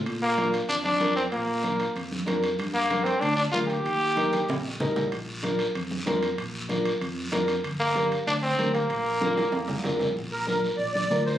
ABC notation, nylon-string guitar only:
X:1
M:4/4
L:1/8
Q:1/4=190
K:Bb
V:1 name="Nylon-string guitar"
z2 [DFB] z3 [DFB] z | z2 [DFB] z3 [DFB] z | z2 [DGB] z3 [DGB] z | z2 [EGB] z3 [EGB] z |
z2 [DFB] z3 [DFB] z | z2 [DFB] z3 [DFB] z | z2 [DGB] z3 [DGB] z | z2 [DFB] z3 [DFB] z |
z2 [DFB] z3 [DFB] z |]